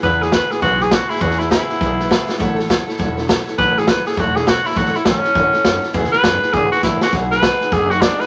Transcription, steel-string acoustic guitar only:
X:1
M:4/4
L:1/8
Q:"Swing" 1/4=203
K:E
V:1 name="Steel-string acoustic guitar"
[C,E,B,EGB] [B,EGB] [B,EGB] [B,EGB] [C,E,B,EGB] [B,EGB] [B,EGB] [B,EGB] | [C,E,B,EGB] [B,EGB] [B,EGB] [B,EGB] [C,E,B,EGB] [B,EGB] [B,EGB] [B,EGB] | [F,A,EAc] [EAc] [F,EAc] [EAc] [F,A,EAc] [EAc] [F,EAc] [EAc] | [F,A,EAc] [EAc] [F,EAc] [EAc] [F,A,EAc] [EAc] [F,EAc] [EAc] |
[F,A,EAc] [EAc] [F,EAc] [EAc] [F,A,EAc] [EAc] [F,EAc] [EAc] | [C,E,B,EGB] [B,EGB] [B,EGB] [B,EGB] [C,E,B,EGB] [B,EGB] [B,EGB] [B,EGB] | [B,DFG] [DFG] [B,DFG] [DFG] [B,DFG] [DFG] [B,DFG] [DFG] |]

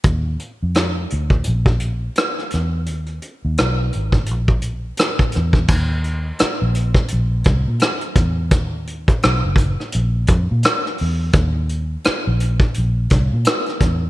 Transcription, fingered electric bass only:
X:1
M:4/4
L:1/16
Q:"Swing 16ths" 1/4=85
K:Bbmix
V:1 name="Fingered electric bass" clef=bass
E,,2 z F,,3 D,,2 B,,,4 z2 _F,,2 | E,,2 z E,, _C,,2 A,,,2 B,,,4 z2 _F,,2 | E,,4 z B,,,2 z B,,,2 C,, B,, z2 _F,,2 | E,,4 =B,,, ^F,,,2 z _B,,,2 =F,, B,, z2 _F,,2 |
E,,4 z B,,,2 z B,,,2 C,, B,, z2 _F,,2 |]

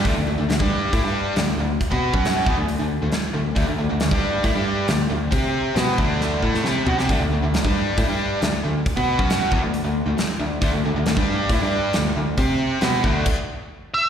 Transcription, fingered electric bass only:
X:1
M:4/4
L:1/16
Q:1/4=136
K:Dmix
V:1 name="Fingered electric bass" clef=bass
D,, D,, D,, D,, D,, G,,3 A,, G,,3 D,,2 D,,2 | z B,,2 F,,3 E,, D,,2 D,,2 D,, z2 D,,2 | D,, D,, D,, D,, D,, G,,3 A,, G,,3 D,,2 D,,2 | C,4 B,,2 D,,4 A,,2 C,2 B,, C, |
D,, D,, D,, D,, D,, G,,3 A,, G,,3 D,,2 D,,2 | z B,,2 F,,3 E,, D,,2 D,,2 D,, z2 D,,2 | D,, D,, D,, D,, D,, G,,3 A,, G,,3 D,,2 D,,2 | C,4 B,,2 D,,2 z8 |]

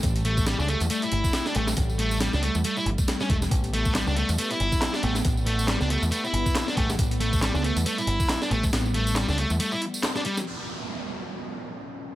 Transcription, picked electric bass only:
X:1
M:4/4
L:1/16
Q:"Swing 16ths" 1/4=138
K:C
V:1 name="Picked electric bass" clef=bass
A,,,4- A,,, ^C,, z E,, z2 G,,, z3 A,,, z | A,,,4- A,,, ^C,, z E,, z2 G,,, z3 E,,, z | A,,,4- A,,, ^C,, z E,, z2 G,,, z3 A,,, z | A,,,4- A,,, ^C,, z E,, z2 G,,, z3 A,,, z |
A,,,4- A,,, ^C,, z E,, z2 G,,, z3 A,,, z | A,,,4- A,,, ^C,, z E,, z8 | z16 |]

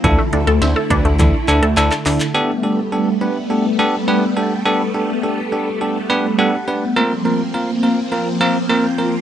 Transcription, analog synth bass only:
X:1
M:4/4
L:1/16
Q:1/4=104
K:G
V:1 name="Analog synth bass" clef=bass
D,, z D,, D,, D,, z D,, D,, D,, z D,, D,, D,, z D,, z | z16 | z16 | z16 |]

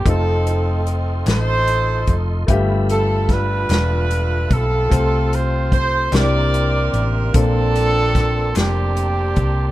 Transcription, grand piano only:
X:1
M:6/8
L:1/8
Q:3/8=49
K:F
V:1 name="Grand piano"
[A,C_EFA]6 | [A,FG=Be]6 | [A,CFAc]3 [CDEGB]3 | [B,CDFA]6 |]
V:2 name="Grand piano" clef=bass
z6 | G,,3 z3 | C,3 C,3 | B,,3 z3 |]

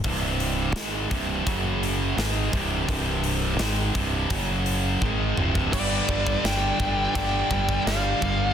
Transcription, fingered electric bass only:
X:1
M:4/4
L:1/8
Q:1/4=84
K:Gphr
V:1 name="Fingered electric bass" clef=bass
C,,,2 A,,, C,,, ^F,,,2 A,,, C,,, | C,,,2 A,,, C,,, ^F,,,2 A,,, C,,, | G,,, G,,, G,,, G,,, G,,, G,,, G,,, G,,, |]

